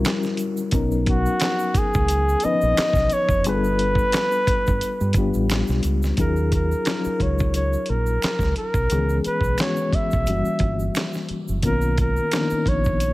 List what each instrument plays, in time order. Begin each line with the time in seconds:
Already playing: reed electric piano G3 C#4 E4 F#4 A#4
0.05 finger snap, snare, clap, closed hi-hat, shaker
0.23 snare, shaker
0.37 closed hi-hat, shaker
0.57 shaker
0.71 fingered electric bass B1, reed electric piano F#3 B3 C#4 D#4 A#4, kick, closed hi-hat, shaker
0.91 shaker
1.06 flugelhorn F#4, kick, closed hi-hat
1.26 shaker
1.40 finger snap, snare, clap, closed hi-hat, shaker
1.59 shaker
1.74 flugelhorn G#4, muted fingered electric bass stroke, kick, closed hi-hat, shaker
1.94 fingered electric bass C#2, kick, shaker
2.08 closed hi-hat, shaker
2.29 shaker
2.40 reed electric piano F3, closed hi-hat, shaker
2.44 reed electric piano B3 C#4 D#4 B4, flugelhorn D#5, muted fingered electric bass stroke
2.61 fingered electric bass A#1, shaker
2.77 finger snap, snare, clap, closed hi-hat, shaker
2.93 fingered electric bass B1, kick, snare, shaker
3.10 flugelhorn C#5, closed hi-hat, shaker
3.29 fingered electric bass F1, kick, shaker
3.44 fingered electric bass G1, reed electric piano G3 B3 D4 F4 G#4, flugelhorn B4, closed hi-hat, shaker
3.54 reed electric piano A4
3.64 shaker
3.79 closed hi-hat
3.95 kick, shaker
4.12 finger snap, snare, clap, closed hi-hat, shaker
4.32 shaker
4.47 muted fingered electric bass stroke, kick, closed hi-hat, shaker
4.67 fingered electric bass G1, kick, shaker
4.81 closed hi-hat, shaker
5.01 fingered electric bass G2, shaker
5.13 fingered electric bass G1, reed electric piano G3, kick, closed hi-hat, shaker
5.17 reed electric piano B3 D4 F4 G4
5.34 fingered electric bass A1, shaker
5.50 finger snap, snare, clap, closed hi-hat, shaker
5.67 fingered electric bass B1, snare, shaker
5.83 fingered electric bass C#2, closed hi-hat, shaker
6.02 snare, shaker
6.17 fingered electric bass D#2, reed electric piano F#3 C#4 D#4 F4 G#4, flugelhorn A#4, kick, closed hi-hat, shaker
6.36 shaker
6.52 flugelhorn A#4, kick, closed hi-hat, shaker
6.72 shaker
6.85 reed electric piano F#3 C#4 D#4 F4 A#4, finger snap, snare, clap, closed hi-hat, shaker
7.04 muted fingered electric bass stroke, shaker
7.20 fingered electric bass C#2, flugelhorn C#5, kick, closed hi-hat
7.39 kick, shaker
7.54 flugelhorn C#5, closed hi-hat, shaker
7.73 shaker
7.86 fingered electric bass A#1, flugelhorn A#4, closed hi-hat
8.06 shaker
8.22 finger snap, muted fingered electric bass stroke, snare, clap, closed hi-hat, shaker
8.39 fingered electric bass C#2, kick, shaker
8.43 snare
8.56 flugelhorn A#4, closed hi-hat
8.74 fingered electric bass B1, kick, shaker
8.90 fingered electric bass C#2, reed electric piano D#3 G#3 B3 C#4 G#4, closed hi-hat, shaker
8.98 reed electric piano E3
9.09 shaker
9.24 flugelhorn B4, muted fingered electric bass stroke, closed hi-hat, shaker
9.41 fingered electric bass B1, kick, shaker
9.58 reed electric piano E3 G#3 B3 C#4 F#4, flugelhorn C#5, finger snap, snare, clap, closed hi-hat, shaker
9.76 shaker
9.93 flugelhorn E5, muted fingered electric bass stroke, kick, closed hi-hat
10.11 fingered electric bass B1, kick, shaker
10.27 fingered electric bass F#1, reed electric piano E3 G3 A#3 C#4 F#4, closed hi-hat, shaker
10.45 shaker
10.59 fingered electric bass G1, kick, closed hi-hat
10.80 shaker
10.95 finger snap, snare, clap, closed hi-hat, shaker
11.13 snare, shaker
11.29 muted fingered electric bass stroke, closed hi-hat
11.48 fingered electric bass F#1, shaker
11.62 fingered electric bass B1, reed electric piano D#3 A#3 B3 C#4 F4, flugelhorn A#4, kick, closed hi-hat, shaker
11.81 shaker
11.98 flugelhorn A#4, kick, closed hi-hat, shaker
12.17 shaker
12.31 reed electric piano D#3 A#3 B3 C#4 D4, finger snap, snare, clap, closed hi-hat, shaker
12.41 reed electric piano D#4
12.50 muted fingered electric bass stroke, shaker
12.66 fingered electric bass A#1, flugelhorn C#5, kick, closed hi-hat
12.84 kick, shaker
13.00 closed hi-hat, shaker